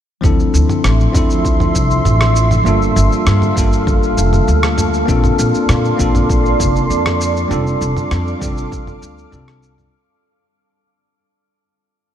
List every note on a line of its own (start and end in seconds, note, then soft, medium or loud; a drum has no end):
0.21 0.45 D2 medium
0.21 1.10 F3 medium
0.21 2.63 F3 medium
0.21 1.10 C4 medium
0.21 1.11 D4 medium
0.21 1.11 E4 medium
0.21 2.63 E5 medium
0.21 2.63 C6 medium
0.21 kick loud
0.21 mid tom medium
0.21 shaker soft
0.26 1.12 A4 medium
0.40 shaker soft
0.54 0.65 D2 medium
0.54 shaker medium
0.69 mid tom medium
0.69 shaker soft
0.84 1.05 A1 medium
0.84 cross-stick medium
0.84 shaker soft
1.00 shaker soft
1.12 1.68 D2 medium
1.12 2.61 F3 medium
1.12 2.62 C4 medium
1.12 2.62 D4 medium
1.12 2.63 E4 medium
1.12 kick loud
1.12 mid tom medium
1.12 shaker medium
1.17 2.64 A4 medium
1.30 shaker soft
1.45 kick medium
1.45 shaker soft
1.60 mid tom medium
1.60 shaker soft
1.75 1.96 C2 medium
1.75 kick medium
1.75 shaker medium
1.91 shaker soft
2.05 2.59 A1 medium
2.05 mid tom medium
2.05 shaker soft
2.21 cross-stick medium
2.21 shaker soft
2.36 shaker medium
2.51 mid tom medium
2.51 shaker soft
2.64 2.87 G1 medium
2.64 3.52 G3 medium
2.64 3.53 A#3 medium
2.64 3.53 D4 medium
2.64 3.54 F4 medium
2.64 5.06 A4 medium
2.64 5.06 F5 medium
2.64 shaker soft
2.69 3.55 A4 loud
2.82 shaker soft
2.96 3.07 G1 medium
2.96 mid tom medium
2.96 shaker medium
3.12 shaker soft
3.27 3.48 G2 loud
3.27 cross-stick medium
3.27 shaker soft
3.42 mid tom medium
3.42 shaker soft
3.55 4.10 G1 medium
3.55 5.04 G3 medium
3.55 5.04 A#3 medium
3.55 5.05 D4 medium
3.55 5.05 F4 medium
3.55 kick loud
3.55 shaker medium
3.60 5.06 A4 medium
3.73 shaker soft
3.87 kick loud
3.87 mid tom medium
3.87 shaker soft
4.03 shaker soft
4.17 4.39 F1 medium
4.17 shaker medium
4.33 mid tom medium
4.33 shaker soft
4.48 5.01 D2 medium
4.48 shaker soft
4.63 cross-stick medium
4.63 shaker soft
4.78 mid tom medium
4.78 shaker medium
4.94 shaker soft
5.06 5.30 A#1 medium
5.06 5.94 A#3 loud
5.06 5.95 C4 medium
5.06 5.96 D4 medium
5.06 5.96 F4 medium
5.06 7.49 A4 medium
5.06 7.49 D5 medium
5.06 7.49 C6 medium
5.06 kick loud
5.06 shaker soft
5.11 5.97 A4 loud
5.24 mid tom medium
5.24 shaker soft
5.39 5.50 A#1 medium
5.39 shaker medium
5.54 shaker soft
5.69 5.90 A#2 loud
5.69 cross-stick medium
5.69 mid tom medium
5.69 shaker soft
5.85 shaker soft
5.97 6.53 A#1 medium
5.97 7.46 A#3 medium
5.97 7.47 C4 medium
5.97 7.47 D4 medium
5.97 7.48 F4 medium
5.97 kick loud
5.97 shaker medium
6.02 7.48 A4 medium
6.15 mid tom medium
6.15 shaker soft
6.30 kick loud
6.30 shaker soft
6.45 shaker soft
6.60 6.81 F1 medium
6.60 kick medium
6.60 mid tom medium
6.60 shaker medium
6.76 shaker soft
6.90 7.44 F2 medium
6.90 shaker soft
7.06 cross-stick medium
7.06 mid tom medium
7.06 shaker soft
7.21 shaker medium
7.37 shaker soft
7.48 7.72 F1 medium
7.48 8.37 G3 medium
7.48 8.37 C4 medium
7.48 8.38 D4 medium
7.48 8.39 F4 medium
7.48 9.91 A4 medium
7.48 9.91 F5 medium
7.48 9.91 D6 medium
7.48 mid tom medium
7.48 shaker soft
7.53 8.39 A4 loud
7.67 shaker soft
7.81 7.92 F1 medium
7.81 shaker medium
7.97 mid tom medium
7.97 shaker soft
8.11 8.33 F2 loud
8.11 cross-stick medium
8.11 shaker soft
8.27 shaker soft
8.39 8.95 F1 medium
8.39 9.28 G3 medium
8.39 9.29 C4 medium
8.39 9.30 D4 medium
8.39 9.30 F4 medium
8.39 kick loud
8.39 mid tom medium
8.39 shaker medium
8.44 9.31 A4 medium
8.57 shaker soft
8.72 kick loud
8.72 shaker soft
8.87 mid tom medium
8.87 shaker soft
9.02 9.23 D2 medium
9.02 shaker medium
9.18 shaker soft
9.31 9.86 C2 medium
9.31 9.89 G3 medium
9.31 9.89 C4 medium
9.31 9.90 D4 medium
9.31 9.90 F4 medium
9.31 9.90 A4 loud
9.31 mid tom medium
9.31 shaker soft
9.48 cross-stick medium
9.48 shaker soft
9.63 shaker medium
9.78 mid tom medium
9.78 shaker soft